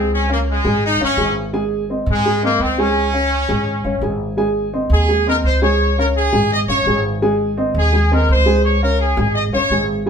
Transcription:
Already playing: upright bass C#2, upright piano G#3 G#4 G#5
0.14 trumpet section C#4
0.28 trumpet section A#3, upright piano C#4 C#5 F5
0.51 trumpet section G#3
0.65 upright bass G#1, upright piano G#3 G#4 G#5
0.86 trumpet section D#4
1.00 upright bass G1, upright piano C#4 C#5 F5
1.04 trumpet section C#4
1.17 upright bass G#1, upright piano G#3 G#4 G#5
1.53 upright piano G#3 G#4 G#5
1.89 upright piano C4 C5 D#5
2.06 upright bass G#2
2.11 trumpet section G#3
2.25 upright piano G#3 G#4 G#5
2.43 trumpet section A#3, upright piano C4 C5 D#5
2.60 upright bass C#2, trumpet section C4
2.78 upright piano G#3 G#4 G#5, trumpet section C#4
3.13 upright piano C#4 C#5 F5
3.48 upright bass G#1, upright piano G#3 G#4 G#5
3.84 upright bass G1, upright piano C#4 C#5 F5
4.01 upright bass G#1, upright piano G#3 G#4 G#5
4.37 upright piano G#3 G#4 G#5
4.73 upright piano C4 C5 D#5
4.90 upright bass D#2, trumpet section G#4
5.08 upright piano G#3 G#4 G#5
5.27 upright piano C4 C5 D#5, trumpet section A#4
5.43 upright bass C#2, trumpet section C5
5.62 upright piano G#3 G#4 G#5, trumpet section C#5
5.98 upright piano C#4 C#5 F5, trumpet section A#4
6.17 trumpet section G#4
6.33 upright bass G#1, upright piano G#3 G#4 G#5
6.53 trumpet section D#5
6.68 upright bass G1, upright piano C#4 C#5 F5, trumpet section C#5
6.86 upright bass G#1, upright piano G#3 G#4 G#5
7.22 upright piano G#3 G#4 G#5
7.57 upright piano C4 C5 D#5
7.74 upright bass D#2
7.79 trumpet section G#4
7.93 upright piano G#3 G#4 G#5
8.11 upright piano C4 C5 D#5, trumpet section A#4
8.29 upright bass C#2, trumpet section C5
8.46 upright piano G#3 G#4 G#5
8.65 trumpet section C#5
8.82 upright piano C#4 C#5 F5, trumpet section A#4
9.01 trumpet section G#4
9.17 upright bass G#1, upright piano G#3 G#4 G#5
9.35 trumpet section D#5
9.52 upright bass G1, upright piano C#4 C#5 F5, trumpet section C#5
9.70 upright bass G#1, upright piano G#3 G#4 G#5
10.06 upright piano G#3 G#4

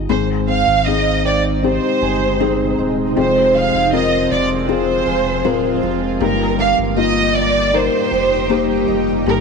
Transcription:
Already playing: felt piano D#4 F4 G4 G#4
0.09 sub bass G#1, steel-string acoustic guitar G#2, felt piano G#2 D#3 C4 D#4 G#4, ambient pad C3 D#3 G#3 C4 D#4, violin section C5
0.48 steel-string acoustic guitar C4, violin section F5
0.67 sub bass G#1
0.86 felt piano C4 D#4 G#4, steel-string acoustic guitar D#4, violin section D#5
1.25 steel-string acoustic guitar C4, violin section D5
1.63 felt piano C4 D#4 G4, steel-string acoustic guitar D#4, violin section C5
2.02 sub bass G1, steel-string acoustic guitar G#4
2.40 felt piano C4 D#4 G#4, steel-string acoustic guitar C4
2.78 sub bass D#1, steel-string acoustic guitar D#4
3.16 sub bass F1, steel-string acoustic guitar F2, felt piano C3 C4 F4 G#4, ambient pad F3 F4, violin section C5
3.55 steel-string acoustic guitar G#3, violin section F5
3.74 sub bass F1
3.92 felt piano C4 F4 A#4, steel-string acoustic guitar F4, violin section D#5
4.31 sub bass F1, steel-string acoustic guitar G#3, violin section D5
4.68 felt piano C4 F4 G#4, steel-string acoustic guitar F4, violin section C5
5.06 sub bass F1, steel-string acoustic guitar G#4
5.44 sub bass D1, steel-string acoustic guitar G#3, felt piano C4 F4 A#4
5.83 sub bass F1, steel-string acoustic guitar F4
6.20 sub bass G1, steel-string acoustic guitar G2, felt piano G2 G3 A#3 D#4 G4, ambient pad A#2 D#3 G3 D#4 G4, violin section A#4
6.59 steel-string acoustic guitar A#3, violin section F5
6.78 sub bass G1
6.97 felt piano A#3 D#4 F4, steel-string acoustic guitar D#4, violin section D#5
7.35 steel-string acoustic guitar A#3, violin section D5
7.73 felt piano A#3 D#4 A#4, steel-string acoustic guitar D#4, violin section C5
8.11 sub bass F1, steel-string acoustic guitar G4
8.49 felt piano A#3 D#4 G4, steel-string acoustic guitar A#3
8.88 sub bass F1, steel-string acoustic guitar D#4
9.26 sub bass G1, steel-string acoustic guitar G2, felt piano G2 G3 A#3 D#4 G4, violin section A#4

